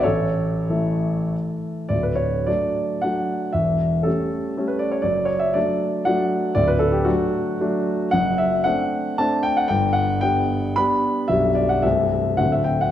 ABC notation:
X:1
M:3/4
L:1/16
Q:1/4=113
K:D
V:1 name="Grand piano"
[Ac]8 z4 | d B c2 d4 f4 | e4 A4- A B d c | d2 c e d4 f4 |
d B A G F8 | [K:G] f2 e2 f4 a2 g f | g2 f2 g4 b4 | e2 d f e4 f e g f |]
V:2 name="Grand piano"
A,,,4 [E,A,E]8 | [D,,,D,,]4 [F,A,D]4 [F,A,D]4 | [E,,,E,,]4 [G,A,C]4 [G,A,C]4 | [F,,,F,,]4 [F,A,D]4 [F,A,D]4 |
[D,,,D,,]4 [F,A,D]4 [F,A,D]4 | [K:G] [F,,,F,,]4 [A,CD]4 [A,CD]4 | [G,,,G,,]4 [G,B,D]4 [G,B,D]4 | [B,,,,B,,,G,B,D]4 [C,,,C,,G,A,C]4 [D,,,D,,D,A,C]4 |]